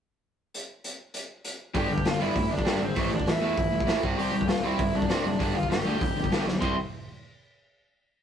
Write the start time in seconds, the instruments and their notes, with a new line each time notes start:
0.54 closed hi-hat
0.84 closed hi-hat
1.14 closed hi-hat
1.45 closed hi-hat
1.74 picked electric bass G1, overdriven electric guitar G2 D3 G3, lead electric guitar G4 G5, kick, open hi-hat
1.89 picked electric bass G1, overdriven electric guitar G2 D3
1.98 kick
2.05 picked electric bass G1, overdriven electric guitar G2 D3, lead electric guitar F4 F5, snare, open hi-hat
2.19 picked electric bass G1, overdriven electric guitar G2 D3 G3, lead electric guitar E4 E5
2.36 picked electric bass D2, overdriven electric guitar G2 D3, kick, open hi-hat
2.50 picked electric bass G1, overdriven electric guitar G2 D3, lead electric guitar D4 D5
2.59 kick
2.65 overdriven electric guitar G2 D3 G3, picked electric bass G2, snare, open hi-hat
2.81 picked electric bass G#1, overdriven electric guitar G2 D3, lead electric guitar C4 C5
2.95 picked electric bass A1, overdriven electric guitar A2 E3 A3, kick, open hi-hat
3.11 overdriven electric guitar A2 E3, lead electric guitar D4 D5
3.20 kick
3.26 picked electric bass A1, overdriven electric guitar A2 E3, lead electric guitar E4 E5, snare, open hi-hat
3.41 picked electric bass E2, overdriven electric guitar A2 E3 A3
3.57 picked electric bass G1, overdriven electric guitar A2 E3, kick, open hi-hat
3.71 picked electric bass G1, overdriven electric guitar A2 E3
3.80 kick
3.86 picked electric bass A1, overdriven electric guitar A2 E3 A3, snare, open hi-hat
4.03 picked electric bass C2, overdriven electric guitar C3 G3 C4, kick
4.17 picked electric bass C2, overdriven electric guitar C3 G3 C4, lead electric guitar G4 G5, open hi-hat
4.32 picked electric bass C2, overdriven electric guitar C3 G3
4.41 kick
4.47 picked electric bass C2, overdriven electric guitar C3 G3, lead electric guitar F4 F5, snare, open hi-hat
4.63 picked electric bass C2, overdriven electric guitar C3 G3 C4, lead electric guitar E4 E5
4.79 picked electric bass G1, overdriven electric guitar C3 G3, kick, open hi-hat
4.94 picked electric bass C2, overdriven electric guitar C3 G3, lead electric guitar D4 D5
5.02 kick
5.09 picked electric bass C3, overdriven electric guitar C3 G3 C4, snare, open hi-hat
5.24 picked electric bass F#1, overdriven electric guitar C3 G3, lead electric guitar D4 D5
5.39 picked electric bass G1, overdriven electric guitar G2 D3 G3, kick, open hi-hat
5.54 overdriven electric guitar G2 D3, lead electric guitar F4 F5
5.63 kick
5.70 picked electric bass G1, overdriven electric guitar G2 D3, lead electric guitar G4 G5, snare, open hi-hat
5.85 picked electric bass D2, overdriven electric guitar G2 D3 G3
6.01 picked electric bass F1, overdriven electric guitar G2 D3, kick, open hi-hat
6.16 picked electric bass F1, overdriven electric guitar G2 D3
6.24 kick
6.29 picked electric bass G1, overdriven electric guitar G2 D3 G3, snare, open hi-hat
6.46 picked electric bass B1, overdriven electric guitar G2 D3, snare
6.61 picked electric bass C2, overdriven electric guitar C3 G3 C4 E4, lead electric guitar C6, kick, crash